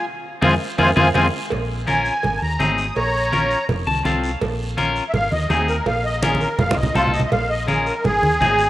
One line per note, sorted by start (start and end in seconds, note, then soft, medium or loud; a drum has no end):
0.42 0.56 F2 medium
0.42 0.54 G#3 loud
0.42 0.54 C4 medium
0.42 0.53 F4 loud
0.42 0.53 G#4 medium
0.42 0.54 C5 medium
0.42 0.54 F5 medium
0.42 0.54 G#5 medium
0.42 high conga loud
0.42 high timbale loud
0.42 long guiro medium
0.78 0.92 F2 medium
0.78 0.90 G#3 medium
0.78 0.90 C4 loud
0.78 0.90 F4 medium
0.78 0.90 G#4 medium
0.78 0.90 C5 loud
0.78 0.90 F5 loud
0.78 0.90 G#5 medium
0.78 high conga loud
0.78 high timbale loud
0.78 long guiro loud
0.96 1.10 F2 loud
0.96 1.08 G#3 medium
0.96 1.08 C4 medium
0.96 1.08 F4 medium
0.96 1.08 G#4 loud
0.96 1.09 C5 medium
0.96 1.09 F5 loud
0.96 1.09 G#5 medium
0.96 high conga loud
0.96 high timbale medium
0.96 long guiro medium
1.14 1.28 F2 medium
1.14 1.27 G#3 medium
1.14 1.26 C4 medium
1.14 1.26 F4 medium
1.14 1.26 G#4 medium
1.14 1.26 C5 loud
1.14 1.26 F5 medium
1.14 1.26 G#5 medium
1.14 high conga medium
1.14 high timbale medium
1.14 long guiro loud
1.50 2.09 A#1 loud
1.50 cowbell loud
1.50 low conga medium
1.50 long guiro medium
1.87 2.12 C#4 medium
1.87 2.13 F4 medium
1.87 2.13 A#4 medium
1.87 2.40 G#5 medium
1.87 high conga medium
1.87 short guiro medium
2.05 short guiro medium
2.23 2.38 G#1 medium
2.23 cowbell medium
2.23 low conga medium
2.23 long guiro medium
2.37 2.40 A5 medium
2.42 2.56 D#2 medium
2.42 2.77 A#5 medium
2.59 2.89 G#1 loud
2.59 2.85 C4 medium
2.59 2.85 D#4 medium
2.59 2.86 G#4 medium
2.59 high conga medium
2.59 low timbale medium
2.59 short guiro medium
2.78 2.95 D#6 medium
2.78 short guiro medium
2.96 3.54 A#1 loud
2.96 3.65 C#5 medium
2.96 3.67 A#5 loud
2.96 cowbell loud
2.96 long guiro medium
3.32 3.58 C#4 medium
3.32 3.58 F4 medium
3.32 3.58 A#4 medium
3.32 high conga medium
3.32 short guiro medium
3.51 short guiro medium
3.69 3.83 F1 medium
3.69 cowbell medium
3.69 low conga medium
3.69 long guiro medium
3.87 4.02 C2 loud
3.87 4.04 A5 medium
3.87 high conga medium
4.05 4.34 C2 loud
4.05 4.30 C4 medium
4.05 4.31 F4 medium
4.05 4.31 A4 medium
4.05 4.39 F5 medium
4.05 high conga medium
4.05 short guiro medium
4.24 short guiro medium
4.41 4.99 A#1 loud
4.41 cowbell loud
4.41 low conga medium
4.41 long guiro medium
4.77 5.03 C#4 medium
4.77 5.03 F4 medium
4.77 5.03 A#4 loud
4.77 high conga medium
4.77 short guiro medium
4.96 short guiro medium
5.09 5.12 E5 medium
5.14 5.28 G#1 medium
5.14 5.32 F5 loud
5.14 cowbell medium
5.14 low conga medium
5.14 long guiro medium
5.32 5.47 D#2 loud
5.32 5.50 D#5 medium
5.32 high conga medium
5.49 5.79 D#2 loud
5.49 5.75 C4 medium
5.49 5.76 D#4 medium
5.49 5.67 G#4 medium
5.49 5.76 G#4 medium
5.49 high conga medium
5.49 low timbale medium
5.49 short guiro medium
5.68 5.86 A#4 medium
5.68 short guiro medium
5.86 6.45 A#1 loud
5.86 6.04 F5 loud
5.86 cowbell loud
5.86 low conga medium
5.86 long guiro medium
6.05 6.22 D#5 loud
6.22 6.48 C#4 medium
6.22 6.48 F4 medium
6.22 6.40 G#4 medium
6.22 6.49 A#4 medium
6.22 high conga loud
6.22 short guiro medium
6.35 high conga medium
6.41 6.58 A#4 medium
6.41 short guiro medium
6.59 6.74 F1 medium
6.59 6.77 F5 loud
6.59 cowbell medium
6.59 low conga medium
6.59 long guiro medium
6.71 low conga medium
6.76 6.92 C2 medium
6.76 6.94 D#5 medium
6.83 low conga medium
6.95 7.24 C2 loud
6.95 7.21 C4 medium
6.95 7.13 F4 loud
6.95 7.21 F4 medium
6.95 7.21 A4 medium
6.95 low conga medium
6.95 low timbale medium
6.95 short guiro medium
7.08 low conga medium
7.12 7.31 D#5 medium
7.12 short guiro medium
7.20 low conga medium
7.28 7.90 A#1 medium
7.28 7.30 E5 medium
7.32 7.50 F5 loud
7.32 cowbell loud
7.32 low conga medium
7.32 long guiro medium
7.50 7.67 D#5 loud
7.68 7.93 C#4 medium
7.68 7.94 F4 medium
7.68 7.86 G#4 medium
7.68 7.94 A#4 medium
7.68 high conga medium
7.68 short guiro medium
7.86 8.04 A#4 medium
7.86 short guiro medium
8.04 8.19 G#1 medium
8.04 8.70 G#4 loud
8.04 cowbell medium
8.04 low conga medium
8.04 long guiro medium
8.22 8.37 D#2 loud
8.22 high conga medium
8.40 8.70 G#1 loud
8.40 8.66 C4 medium
8.40 8.66 D#4 medium
8.40 8.67 G#4 medium
8.40 high conga medium
8.40 low conga medium
8.40 low timbale medium
8.40 short guiro medium
8.59 short guiro medium